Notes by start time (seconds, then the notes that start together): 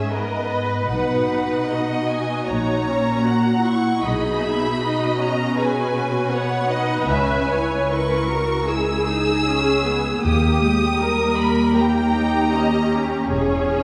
Already playing: G#2 C#4 G#4 E5
0.12 B3 A#4 B4 D#5
0.51 B4
0.91 B1 B2 D#4 B4 F#5
1.69 F#4 D#5
2.09 G#5
2.46 A#1 A#2 D#4 C#5 A#5
2.87 C#4
3.25 F#4 F#5
3.64 E4 C#6
4.03 B1 B2 D#4 G#4 D#5 B5
4.41 E5
4.81 D#4 F#4 D#5
5.19 C#4 A#5
5.58 G#4 B4 G#5
5.95 F#4
6.32 B3 B4 C#5 F#5
6.70 D#4 D#5
7.02 A#5
7.08 C#2 C#4 E5 G#5
7.49 E4 C#5
7.92 E4 A#4 B4 C#6
8.31 F#4 A#4
8.69 E4 G#4 E6
9.07 D#4
9.46 C#4 G#4
9.85 B3
10.23 D#2 A#3 G4 D#6
10.61 G#3
10.99 G3 A#4
11.37 A#4 B5
11.76 A#3 G4 G5 A#5
12.14 D#4
12.53 C#4 D#5
12.92 G4
13.30 E1 E2 G#4 C#5